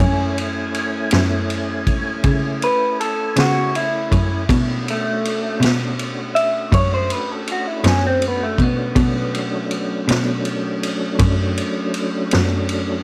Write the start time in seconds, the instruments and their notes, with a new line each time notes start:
Already playing: clean electric guitar C#4
0.00 cello F#2, tonewheel organ A3 C#4 E4 G#5, kick
0.38 ride
0.74 ride
1.11 cello F#2, snare, ride
1.50 ride
1.87 kick, ride
2.24 cello C#3, kick, ride
2.62 clean electric guitar B4, ride
3.00 clean electric guitar A4, ride
3.36 cello C#3, clean electric guitar F#4, snare, ride
3.75 clean electric guitar E4, ride
4.12 cello F#2, kick, ride
4.49 cello B2, tonewheel organ A3 C#4 D4 F#4, kick, ride
4.88 clean electric guitar A3, ride
5.25 ride
5.60 cello B2, snare, ride
5.99 ride
6.35 clean electric guitar E5, ride
6.72 cello F#2, clean electric guitar C#5, kick, ride
6.94 clean electric guitar C5
7.10 clean electric guitar B4, ride
7.32 clean electric guitar A4
7.47 ride
7.52 clean electric guitar F#4
7.67 clean electric guitar E4
7.84 cello F#2, clean electric guitar C#4, snare, ride
8.07 clean electric guitar C4
8.22 ride
8.28 clean electric guitar B3
8.43 clean electric guitar A3
8.58 cello B2, clean electric guitar B3, kick, ride
8.96 cello B2, tonewheel organ F#3 A3 C#4 D4, kick, ride
9.34 ride
9.71 ride
10.08 cello B2, snare, ride
10.45 ride
10.83 ride
11.19 cello F#2, kick, ride
11.57 ride
11.94 ride
12.31 cello F#2, snare, ride
12.69 ride